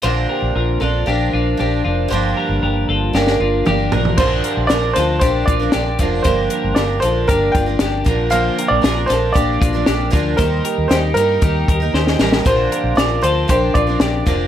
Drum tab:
CC |----------------|----------------|x---------------|----------------|
HH |----------------|----------------|--x-x-x-x-x-x-x-|x-x-x-x-x-x-x-x-|
SD |----------------|--------oo------|----o-o-----o---|----o-------o---|
T2 |----------------|------------o---|----------------|----------------|
FT |----------------|--------------oo|----------------|----------------|
BD |----------------|----------------|o-------o-o---o-|o-------o-o---o-|

CC |----------------|----------------|----------------|
HH |x-x-x-x-x-x-x-x-|x-x-x-x-x-x-----|x-x-x-x-x-x-x-x-|
SD |----o-o-----o---|----o-------oooo|----o-------o---|
T2 |----------------|----------------|----------------|
FT |----------------|----------------|----------------|
BD |--------o-o---o-|o-------o-o-----|o-------o-o---o-|